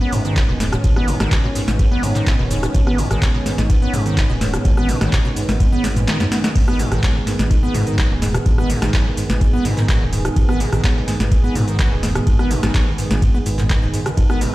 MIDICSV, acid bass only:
0, 0, Header, 1, 2, 480
1, 0, Start_track
1, 0, Key_signature, 5, "minor"
1, 0, Tempo, 476190
1, 847, Time_signature, 4, 2, 24, 8
1, 14664, End_track
2, 0, Start_track
2, 0, Title_t, "Acid bass"
2, 0, Program_c, 0, 38
2, 11, Note_on_c, 0, 59, 104
2, 126, Note_on_c, 0, 44, 78
2, 141, Note_off_c, 0, 59, 0
2, 229, Note_off_c, 0, 44, 0
2, 251, Note_on_c, 0, 51, 78
2, 366, Note_on_c, 0, 47, 86
2, 381, Note_off_c, 0, 51, 0
2, 434, Note_off_c, 0, 47, 0
2, 490, Note_on_c, 0, 47, 107
2, 529, Note_off_c, 0, 47, 0
2, 607, Note_on_c, 0, 44, 79
2, 675, Note_off_c, 0, 44, 0
2, 731, Note_on_c, 0, 46, 79
2, 769, Note_off_c, 0, 46, 0
2, 847, Note_on_c, 0, 44, 83
2, 915, Note_off_c, 0, 44, 0
2, 972, Note_on_c, 0, 59, 100
2, 1087, Note_on_c, 0, 44, 80
2, 1102, Note_off_c, 0, 59, 0
2, 1189, Note_off_c, 0, 44, 0
2, 1212, Note_on_c, 0, 51, 78
2, 1327, Note_on_c, 0, 47, 84
2, 1342, Note_off_c, 0, 51, 0
2, 1395, Note_off_c, 0, 47, 0
2, 1452, Note_on_c, 0, 47, 104
2, 1489, Note_off_c, 0, 47, 0
2, 1567, Note_on_c, 0, 44, 77
2, 1635, Note_off_c, 0, 44, 0
2, 1692, Note_on_c, 0, 46, 78
2, 1729, Note_off_c, 0, 46, 0
2, 1806, Note_on_c, 0, 44, 82
2, 1875, Note_off_c, 0, 44, 0
2, 1931, Note_on_c, 0, 59, 107
2, 2047, Note_on_c, 0, 44, 79
2, 2062, Note_off_c, 0, 59, 0
2, 2149, Note_off_c, 0, 44, 0
2, 2171, Note_on_c, 0, 51, 77
2, 2286, Note_on_c, 0, 47, 83
2, 2301, Note_off_c, 0, 51, 0
2, 2355, Note_off_c, 0, 47, 0
2, 2411, Note_on_c, 0, 47, 104
2, 2449, Note_off_c, 0, 47, 0
2, 2526, Note_on_c, 0, 44, 78
2, 2595, Note_off_c, 0, 44, 0
2, 2651, Note_on_c, 0, 46, 81
2, 2689, Note_off_c, 0, 46, 0
2, 2766, Note_on_c, 0, 44, 85
2, 2835, Note_off_c, 0, 44, 0
2, 2891, Note_on_c, 0, 59, 104
2, 3007, Note_on_c, 0, 44, 78
2, 3022, Note_off_c, 0, 59, 0
2, 3109, Note_off_c, 0, 44, 0
2, 3131, Note_on_c, 0, 51, 81
2, 3247, Note_on_c, 0, 47, 82
2, 3262, Note_off_c, 0, 51, 0
2, 3315, Note_off_c, 0, 47, 0
2, 3371, Note_on_c, 0, 47, 105
2, 3409, Note_off_c, 0, 47, 0
2, 3487, Note_on_c, 0, 44, 76
2, 3555, Note_off_c, 0, 44, 0
2, 3612, Note_on_c, 0, 46, 76
2, 3650, Note_off_c, 0, 46, 0
2, 3727, Note_on_c, 0, 44, 85
2, 3795, Note_off_c, 0, 44, 0
2, 3852, Note_on_c, 0, 59, 102
2, 3966, Note_on_c, 0, 44, 79
2, 3982, Note_off_c, 0, 59, 0
2, 4069, Note_off_c, 0, 44, 0
2, 4092, Note_on_c, 0, 51, 77
2, 4207, Note_on_c, 0, 47, 81
2, 4222, Note_off_c, 0, 51, 0
2, 4275, Note_off_c, 0, 47, 0
2, 4331, Note_on_c, 0, 47, 109
2, 4369, Note_off_c, 0, 47, 0
2, 4447, Note_on_c, 0, 44, 76
2, 4515, Note_off_c, 0, 44, 0
2, 4571, Note_on_c, 0, 46, 83
2, 4609, Note_off_c, 0, 46, 0
2, 4686, Note_on_c, 0, 44, 88
2, 4755, Note_off_c, 0, 44, 0
2, 4811, Note_on_c, 0, 59, 100
2, 4927, Note_on_c, 0, 44, 76
2, 4942, Note_off_c, 0, 59, 0
2, 5029, Note_off_c, 0, 44, 0
2, 5051, Note_on_c, 0, 51, 76
2, 5167, Note_on_c, 0, 47, 84
2, 5182, Note_off_c, 0, 51, 0
2, 5235, Note_off_c, 0, 47, 0
2, 5292, Note_on_c, 0, 47, 103
2, 5329, Note_off_c, 0, 47, 0
2, 5407, Note_on_c, 0, 44, 73
2, 5475, Note_off_c, 0, 44, 0
2, 5532, Note_on_c, 0, 46, 76
2, 5569, Note_off_c, 0, 46, 0
2, 5647, Note_on_c, 0, 44, 82
2, 5715, Note_off_c, 0, 44, 0
2, 5771, Note_on_c, 0, 59, 100
2, 5887, Note_on_c, 0, 44, 80
2, 5902, Note_off_c, 0, 59, 0
2, 5928, Note_off_c, 0, 44, 0
2, 6011, Note_on_c, 0, 44, 101
2, 6049, Note_off_c, 0, 44, 0
2, 6128, Note_on_c, 0, 51, 103
2, 6230, Note_off_c, 0, 51, 0
2, 6252, Note_on_c, 0, 42, 107
2, 6315, Note_off_c, 0, 42, 0
2, 6367, Note_on_c, 0, 59, 76
2, 6435, Note_off_c, 0, 59, 0
2, 6491, Note_on_c, 0, 54, 78
2, 6555, Note_off_c, 0, 54, 0
2, 6607, Note_on_c, 0, 44, 85
2, 6675, Note_off_c, 0, 44, 0
2, 6731, Note_on_c, 0, 59, 106
2, 6847, Note_on_c, 0, 44, 82
2, 6862, Note_off_c, 0, 59, 0
2, 6949, Note_off_c, 0, 44, 0
2, 6971, Note_on_c, 0, 51, 81
2, 7066, Note_off_c, 0, 51, 0
2, 7086, Note_on_c, 0, 54, 81
2, 7211, Note_on_c, 0, 47, 105
2, 7226, Note_off_c, 0, 54, 0
2, 7249, Note_off_c, 0, 47, 0
2, 7327, Note_on_c, 0, 44, 73
2, 7395, Note_off_c, 0, 44, 0
2, 7451, Note_on_c, 0, 46, 82
2, 7489, Note_off_c, 0, 46, 0
2, 7567, Note_on_c, 0, 44, 80
2, 7635, Note_off_c, 0, 44, 0
2, 7691, Note_on_c, 0, 59, 98
2, 7805, Note_on_c, 0, 44, 76
2, 7821, Note_off_c, 0, 59, 0
2, 7909, Note_off_c, 0, 44, 0
2, 7930, Note_on_c, 0, 51, 76
2, 8026, Note_off_c, 0, 51, 0
2, 8046, Note_on_c, 0, 54, 86
2, 8170, Note_on_c, 0, 47, 102
2, 8185, Note_off_c, 0, 54, 0
2, 8209, Note_off_c, 0, 47, 0
2, 8287, Note_on_c, 0, 44, 78
2, 8355, Note_off_c, 0, 44, 0
2, 8411, Note_on_c, 0, 46, 80
2, 8449, Note_off_c, 0, 46, 0
2, 8527, Note_on_c, 0, 44, 88
2, 8595, Note_off_c, 0, 44, 0
2, 8651, Note_on_c, 0, 59, 108
2, 8767, Note_on_c, 0, 44, 77
2, 8782, Note_off_c, 0, 59, 0
2, 8869, Note_off_c, 0, 44, 0
2, 8891, Note_on_c, 0, 51, 82
2, 8986, Note_off_c, 0, 51, 0
2, 9006, Note_on_c, 0, 54, 83
2, 9131, Note_on_c, 0, 47, 108
2, 9146, Note_off_c, 0, 54, 0
2, 9169, Note_off_c, 0, 47, 0
2, 9245, Note_on_c, 0, 44, 76
2, 9314, Note_off_c, 0, 44, 0
2, 9371, Note_on_c, 0, 46, 83
2, 9409, Note_off_c, 0, 46, 0
2, 9486, Note_on_c, 0, 44, 84
2, 9555, Note_off_c, 0, 44, 0
2, 9611, Note_on_c, 0, 59, 102
2, 9726, Note_on_c, 0, 44, 77
2, 9741, Note_off_c, 0, 59, 0
2, 9829, Note_off_c, 0, 44, 0
2, 9851, Note_on_c, 0, 51, 76
2, 9946, Note_off_c, 0, 51, 0
2, 9966, Note_on_c, 0, 54, 84
2, 10091, Note_on_c, 0, 47, 104
2, 10106, Note_off_c, 0, 54, 0
2, 10129, Note_off_c, 0, 47, 0
2, 10206, Note_on_c, 0, 44, 76
2, 10275, Note_off_c, 0, 44, 0
2, 10331, Note_on_c, 0, 46, 80
2, 10369, Note_off_c, 0, 46, 0
2, 10446, Note_on_c, 0, 44, 87
2, 10515, Note_off_c, 0, 44, 0
2, 10571, Note_on_c, 0, 59, 106
2, 10686, Note_on_c, 0, 44, 77
2, 10701, Note_off_c, 0, 59, 0
2, 10789, Note_off_c, 0, 44, 0
2, 10811, Note_on_c, 0, 51, 80
2, 10906, Note_off_c, 0, 51, 0
2, 10926, Note_on_c, 0, 54, 82
2, 11051, Note_on_c, 0, 47, 109
2, 11066, Note_off_c, 0, 54, 0
2, 11089, Note_off_c, 0, 47, 0
2, 11166, Note_on_c, 0, 44, 74
2, 11235, Note_off_c, 0, 44, 0
2, 11291, Note_on_c, 0, 46, 78
2, 11329, Note_off_c, 0, 46, 0
2, 11406, Note_on_c, 0, 44, 85
2, 11475, Note_off_c, 0, 44, 0
2, 11531, Note_on_c, 0, 59, 99
2, 11647, Note_on_c, 0, 44, 77
2, 11662, Note_off_c, 0, 59, 0
2, 11749, Note_off_c, 0, 44, 0
2, 11771, Note_on_c, 0, 51, 74
2, 11866, Note_off_c, 0, 51, 0
2, 11886, Note_on_c, 0, 54, 81
2, 12010, Note_on_c, 0, 47, 101
2, 12025, Note_off_c, 0, 54, 0
2, 12049, Note_off_c, 0, 47, 0
2, 12127, Note_on_c, 0, 44, 78
2, 12195, Note_off_c, 0, 44, 0
2, 12252, Note_on_c, 0, 46, 80
2, 12289, Note_off_c, 0, 46, 0
2, 12367, Note_on_c, 0, 44, 87
2, 12435, Note_off_c, 0, 44, 0
2, 12492, Note_on_c, 0, 59, 102
2, 12607, Note_on_c, 0, 44, 81
2, 12622, Note_off_c, 0, 59, 0
2, 12709, Note_off_c, 0, 44, 0
2, 12732, Note_on_c, 0, 51, 82
2, 12826, Note_off_c, 0, 51, 0
2, 12846, Note_on_c, 0, 54, 80
2, 12971, Note_on_c, 0, 47, 107
2, 12986, Note_off_c, 0, 54, 0
2, 13009, Note_off_c, 0, 47, 0
2, 13087, Note_on_c, 0, 44, 73
2, 13155, Note_off_c, 0, 44, 0
2, 13212, Note_on_c, 0, 46, 78
2, 13249, Note_off_c, 0, 46, 0
2, 13327, Note_on_c, 0, 44, 84
2, 13395, Note_off_c, 0, 44, 0
2, 13452, Note_on_c, 0, 59, 101
2, 13489, Note_off_c, 0, 59, 0
2, 13567, Note_on_c, 0, 44, 76
2, 13608, Note_off_c, 0, 44, 0
2, 13692, Note_on_c, 0, 44, 75
2, 13755, Note_off_c, 0, 44, 0
2, 13807, Note_on_c, 0, 51, 99
2, 13848, Note_off_c, 0, 51, 0
2, 13932, Note_on_c, 0, 44, 80
2, 13995, Note_off_c, 0, 44, 0
2, 14047, Note_on_c, 0, 44, 81
2, 14115, Note_off_c, 0, 44, 0
2, 14171, Note_on_c, 0, 49, 81
2, 14209, Note_off_c, 0, 49, 0
2, 14286, Note_on_c, 0, 44, 89
2, 14355, Note_off_c, 0, 44, 0
2, 14410, Note_on_c, 0, 59, 106
2, 14526, Note_on_c, 0, 44, 79
2, 14541, Note_off_c, 0, 59, 0
2, 14629, Note_off_c, 0, 44, 0
2, 14664, End_track
0, 0, End_of_file